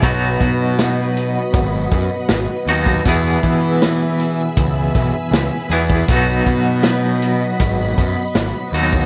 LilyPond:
<<
  \new Staff \with { instrumentName = "String machine" } { \time 4/4 \key b \mixolydian \tempo 4 = 79 << { <b' b''>1~ | <b' b''>1~ | <b' b''>1 | } \\ { <fis' dis''>1 | <gis' e''>1 | <fis' dis''>1 | } >> }
  \new Staff \with { instrumentName = "Clean electric guitar" } { \time 4/4 \key b \mixolydian <b, fis b dis' fis'>2.~ <b, fis b dis' fis'>8 <b, fis b dis' fis'>8 | <e, b, e b e' gis'>2.~ <e, b, e b e' gis'>8 <e, b, e b e' gis'>8 | <b, fis b dis' fis'>2.~ <b, fis b dis' fis'>8 <b, fis b dis' fis'>8 | }
  \new Staff \with { instrumentName = "Picked electric bass" } { \clef bass \time 4/4 \key b \mixolydian b,,8 b,4. gis,,8 fis,16 r16 gis,,16 r16 dis,8 | e,8 e4. cis,8 b,,16 r16 cis,16 r16 e,8 | b,,8 b,4. gis,,8 fis,16 r16 gis,,16 r16 dis,8 | }
  \new DrumStaff \with { instrumentName = "Drums" } \drummode { \time 4/4 <hh bd>8 <hh bd>8 <hh sn>8 hh8 <hh bd>8 <hh bd>8 <hh sn>8 hh16 bd16 | <hh bd>8 <hh bd>8 <hh sn>8 hh8 <hh bd>8 <hh bd>8 <hh sn>8 hh16 bd16 | <hh bd>8 <hh bd>8 <hh sn>8 hh8 <hh bd>8 <hh bd>8 <hh sn>8 hh16 bd16 | }
>>